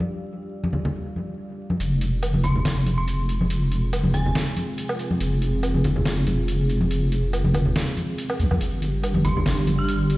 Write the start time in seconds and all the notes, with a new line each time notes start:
Already playing: G4 D5 F5
0.00 high conga
0.64 high conga
0.73 low conga
0.85 low conga
1.16 high conga
1.70 high conga
1.80 F1 C4 F4 G#4, closed hi-hat
2.01 closed hi-hat
2.23 closed hi-hat, low woodblock
2.34 high conga
2.44 F1 C6, closed hi-hat, low conga
2.55 low conga
2.65 F1, snare, closed hi-hat
2.86 closed hi-hat, high conga
2.98 C6
3.08 closed hi-hat
3.29 closed hi-hat
3.41 high conga
3.50 closed hi-hat
3.72 closed hi-hat
3.93 closed hi-hat, low woodblock
4.04 high conga
4.13 F1 G#5, closed hi-hat, low conga
4.26 low conga
4.35 snare, closed hi-hat
4.57 closed hi-hat, high conga
4.78 closed hi-hat
4.89 low woodblock
4.99 closed hi-hat
5.11 high conga
5.20 F1, closed hi-hat
5.42 closed hi-hat
5.63 closed hi-hat, low woodblock
5.74 high conga
5.84 F1, closed hi-hat, low conga
5.96 low conga
6.05 F1, snare, closed hi-hat
6.27 closed hi-hat, high conga
6.48 closed hi-hat
6.69 closed hi-hat
6.81 high conga
6.91 closed hi-hat
7.12 closed hi-hat
7.33 closed hi-hat, low woodblock
7.44 high conga
7.54 F1, closed hi-hat, low conga, low woodblock
7.65 low conga
7.76 snare, closed hi-hat
7.97 closed hi-hat, high conga
8.18 closed hi-hat
8.30 low woodblock
8.39 C2, closed hi-hat
8.51 C2, high conga, low woodblock
8.61 G1 G3 D4 G4, closed hi-hat
8.82 closed hi-hat
9.03 closed hi-hat, low woodblock
9.14 high conga
9.25 G1 C6, closed hi-hat, low conga
9.37 low conga
9.46 G1, snare, closed hi-hat
9.67 closed hi-hat, high conga
9.79 F6
9.88 closed hi-hat
10.10 closed hi-hat